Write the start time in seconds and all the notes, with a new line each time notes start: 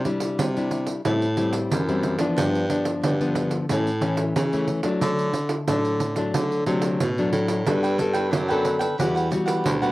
Already playing: C3
0.05 G3 D4 E4, pandeiro
0.20 pandeiro
0.39 C3 G3, pandeiro
0.56 G3 D4 E4, pandeiro
0.71 pandeiro
0.87 pandeiro
1.05 A2 G3 C4 E4, pandeiro
1.22 pandeiro
1.37 G3 C4 E4, pandeiro
1.53 pandeiro
1.72 F#2 E3, pandeiro
1.89 G3 C4 E4, pandeiro
2.03 pandeiro
2.19 F3 B3 D4, pandeiro
2.37 G2, pandeiro
2.55 pandeiro
2.70 F3 B3 D4, pandeiro
2.85 pandeiro
3.04 G2 D3, pandeiro
3.21 F3 B3 D4, pandeiro
3.35 pandeiro
3.51 pandeiro
3.69 A2 E3 A3 C#4, pandeiro
3.87 pandeiro
4.01 E3 A3 C#4, pandeiro
4.17 pandeiro
4.36 C#3 E3, pandeiro
4.53 E3 A3 C#4, pandeiro
4.67 pandeiro
4.83 F#3 A3 D4, pandeiro
5.01 D3, pandeiro
5.19 pandeiro
5.34 pandeiro
5.49 pandeiro
5.68 A2 D3 F#3 A3 D4, pandeiro
5.85 pandeiro
6.00 pandeiro
6.16 F#3 A3 D4, pandeiro
6.34 D3, pandeiro
6.52 pandeiro
6.66 C3 F#3 A3 D4, pandeiro
6.82 pandeiro
7.00 A2 B2, pandeiro
7.18 F#3 A3 D4, pandeiro
7.33 A2, pandeiro
7.48 pandeiro
7.66 G2 G3 B3 D4 A4 B4 G5, pandeiro
7.83 A4 B4 G5, pandeiro
7.98 B3 D4 A4, muted cavaquinho stroke, pandeiro
8.13 A4 B4 G5, pandeiro
8.31 F#2 D3 D4 A4 B4 G5, pandeiro
8.48 B3 D4 A4 B4 G5, pandeiro
8.65 pandeiro
8.79 A4 B4 G5, pandeiro
8.98 E2 E3 G3 B3 E4 F#4 G4 B4 F#5, pandeiro
9.15 G4 B4 F#5, pandeiro
9.30 G3 B3 F#4, muted cavaquinho stroke, pandeiro
9.46 G4 B4 F#5, pandeiro
9.65 D2 B2, pandeiro
9.82 G3 B3 F#4 G4 B4 F#5, pandeiro